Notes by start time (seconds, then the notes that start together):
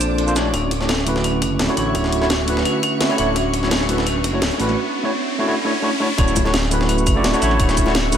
Already playing: A#1 A#3 D4 F4 A4 C5 D6, swell
0.00 C4, closed hi-hat, cabasa
0.18 closed hi-hat
0.27 A#3 D4 F4 A4 C5, cabasa
0.35 A3 D4 E4 F#4 C#5, snare, closed hi-hat, cabasa
0.45 closed hi-hat
0.54 D1 C#4 F#4 E5 C#6, kick, closed hi-hat, riser
0.71 kick, closed hi-hat
0.80 A3 D4 E4 F#4 C#5, snare
0.89 C#4, snare, closed hi-hat
0.98 snare
1.05 D3 A3 E4 F#4 B4, closed hi-hat
1.16 snare
1.24 C#4, closed hi-hat
1.42 F#1 C#4, kick, closed hi-hat
1.59 D1, snare, closed hi-hat
1.68 A3 D4 E4 F#4 C#5, closed hi-hat
1.75 A1 D3 A3 D4 E4 F#4 C#5, closed hi-hat
1.95 D1 C#4, kick, closed hi-hat
2.04 snare
2.12 closed hi-hat
2.21 A3 D4 E4 F#4 C#5, snare
2.30 C#4, snare, closed hi-hat
2.46 D3 A3 E4 F#4 B4, closed hi-hat
2.57 snare
2.65 C#4, closed hi-hat
2.83 C#4, kick, closed hi-hat
3.01 snare, closed hi-hat
3.09 A3 D4 E4 F#4 C#5, closed hi-hat
3.16 D1 A3 D4 E4 F#4 C#5, closed hi-hat
3.36 D1 C#4, kick, closed hi-hat
3.54 kick, closed hi-hat
3.62 A3 D4 E4 F#4 C#5, snare
3.71 C#4, snare, closed hi-hat
3.81 snare
3.87 A3 D4 E4 F#4 B4, closed hi-hat
3.98 snare
4.07 C#4, closed hi-hat
4.24 F#1, kick, closed hi-hat
4.33 A3 D4 E4 F#4 C#5
4.42 D1 C#4, snare, closed hi-hat
4.51 closed hi-hat
4.58 A1 A3 D4 E4 F#4 B4, closed hi-hat, open hi-hat
4.69 snare
5.03 A3 D4 E4 F#4 C#5
5.39 A3 D4 E4 F#4 C#5
5.47 A3 D4 E4 F#4 C#5
5.64 A3 D4 E4 F#4 C#5
5.82 A3 D4 E4 F#4 C#5
6.00 A3 D4 E4 F#4 C#5
6.18 D1 A3 C#4 D4 E4 F#4 C#5 E5 C#6, kick, closed hi-hat
6.28 cabasa
6.36 kick, closed hi-hat, high bongo, cabasa
6.45 A3 D4 E4 F#4 C#5, snare, high bongo
6.54 C#4, snare, closed hi-hat
6.63 snare
6.70 D3 A3 E4 F#4 B4, closed hi-hat, cabasa
6.81 snare
6.89 C#4, closed hi-hat
6.98 cabasa
7.07 F#1 C#4, kick, closed hi-hat, cabasa
7.15 A3 D4 E4 F#4 D5
7.24 D1, snare, closed hi-hat
7.33 A3 D4 E4 F#4 C#5, closed hi-hat, cabasa
7.40 A1 D3 A3 D4 E4 F#4 C#5, closed hi-hat, open hi-hat, cabasa
7.51 snare
7.60 D1 C#4, kick, closed hi-hat
7.69 snare, cabasa
7.77 kick, closed hi-hat, cabasa
7.86 A3 D4 E4 F#4 C#5, snare, high bongo
7.95 C#4, snare, closed hi-hat
8.11 D3 A3 E4 F#4, closed hi-hat, cabasa